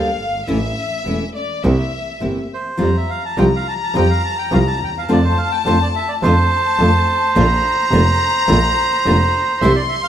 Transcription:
Already playing: D2 F5
0.19 G1
0.46 A1 E3 A3 C#4 E4 E5
1.05 E1 E3 A3 C#4 E4
1.35 D5
1.64 C2 C3 E3 A#3 C4 E4 E5
2.21 G1 C3 E3 A#3 C4 E4
2.54 C5
2.77 F2 F3 G3 C4 F4 A#5
2.97 E5
3.10 F5
3.25 A5
3.37 C2 F3 G3 C4 F4 G5
3.56 F5
3.68 A5
3.83 A5
3.94 F2 F3 G3 C4 F4 G5
4.10 F5
4.24 A5
4.38 G5
4.51 C2 F3 G3 C4 F4 F5
4.67 A5
4.80 D#2 G5
4.98 F5
5.08 F2 D3 A3 C4 F4 D5 A5
5.24 C5
5.37 F5
5.52 G5
5.65 F2 D3 A3 C4 F4 C5
5.82 D5
5.96 E5
6.08 D5
6.22 F2 D3 A3 C4 F4 C5 A5
6.78 F2 D3 A3 C4 F4
7.35 A#1 D3 A#3 D4 F4 A#5
7.91 F1 D3 A#3 D4 F4
8.48 A#1 D3 A#3 D4 F4
9.05 F1 D3 A#3 D4 F4
9.61 C2 C3 E3 G3 D4 E4 E5 C6
9.76 D5
9.89 E5
10.03 F5

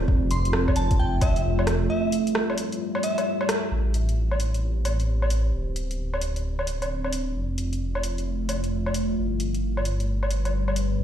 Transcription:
Already playing: F4
0.08 F1 A3 E5, kick
0.31 C6, closed hi-hat
0.45 closed hi-hat
0.53 cross-stick
0.68 kick, low woodblock
0.76 A5, closed hi-hat
0.91 kick, closed hi-hat
0.99 G5
1.21 E5, kick, closed hi-hat, low woodblock
1.36 closed hi-hat
1.59 low woodblock
1.67 cross-stick, closed hi-hat
1.90 E5
2.12 closed hi-hat
2.27 closed hi-hat
2.35 cross-stick
2.50 low woodblock
2.58 closed hi-hat
2.72 closed hi-hat
2.95 low woodblock
3.03 E5, closed hi-hat
3.18 closed hi-hat, low woodblock
3.41 low woodblock
3.49 cross-stick, closed hi-hat
3.71 A1 G4 B4 C5
3.94 closed hi-hat
4.09 closed hi-hat
4.31 low woodblock
4.40 closed hi-hat
4.54 closed hi-hat
4.85 closed hi-hat, low woodblock
5.00 closed hi-hat
5.22 low woodblock
5.30 closed hi-hat
5.53 D1 C4 F4 D5
5.76 closed hi-hat
5.91 closed hi-hat
6.14 low woodblock
6.21 closed hi-hat
6.36 closed hi-hat
6.59 low woodblock
6.67 closed hi-hat
6.82 closed hi-hat, low woodblock
7.04 low woodblock
7.12 closed hi-hat
7.35 F1 A3 E5
7.58 closed hi-hat
7.73 closed hi-hat
7.95 low woodblock
8.03 closed hi-hat
8.18 closed hi-hat
8.49 closed hi-hat, low woodblock
8.64 closed hi-hat
8.86 low woodblock
8.94 closed hi-hat
9.17 G1 G3 B4
9.40 closed hi-hat
9.54 closed hi-hat
9.77 low woodblock
9.85 closed hi-hat
10.00 closed hi-hat
10.23 low woodblock
10.31 closed hi-hat
10.45 closed hi-hat, low woodblock
10.68 low woodblock
10.76 closed hi-hat
10.99 A1

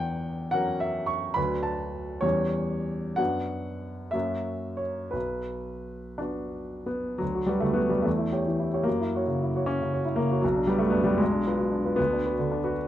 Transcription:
Already playing: E2 F#5 G5
0.51 F#3 C#4 A#4 F#5
0.80 E5
1.06 C#6
1.34 D2 F#3 D4 B4 B5
1.63 A5
2.21 E2 G3 C#4 G4 C#5
3.16 F#2 B3 D4 F#4 F#5
4.11 F#2 A#3 C#4 F#4 E5
4.77 C#5
5.11 B1 B4
6.21 B3 D4 F#4
6.86 B3
7.18 D2 F#3
7.35 F#4
7.46 G3 F#4 B4
7.60 D3 A3
7.73 B3 F#4
7.89 G3 F#4 B4
8.02 E2 A3
8.18 E4
8.32 G4 C#5
8.47 E3
8.60 E4
8.73 G4 C#5
8.83 F#2 A#3
9.01 E4
9.15 F#4 C#5
9.27 C#3
9.43 E4
9.56 F#4 C#5
9.66 C#4
9.81 C#3
9.94 F#4 C#5
10.05 E4
10.16 C#3 A#3
10.31 F#4 C#5
10.41 B1 F#3
10.57 D4
10.67 G3 F#4 B4
10.78 F#2 A3
10.90 B3 D4
11.04 G3 F#4 B4
11.17 B1 G#3
11.33 D4
11.46 F4 B4
11.58 B2
11.72 D4
11.85 F4 B4
11.96 D2 B3
12.13 D4
12.26 F#4 B4
12.39 D3
12.52 D4
12.64 F#4 B4

